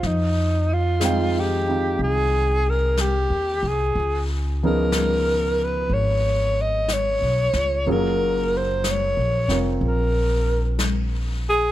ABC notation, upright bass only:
X:1
M:4/4
L:1/8
Q:"Swing" 1/4=61
K:Fm
V:1 name="Upright bass" clef=bass
F,,4 C,,2- (3C,, E,, C,, | D,,4 A,,,2- (3A,,, _C,, D,, | _G,,,2- (3G,,, B,,, F,,, B,,,4 |]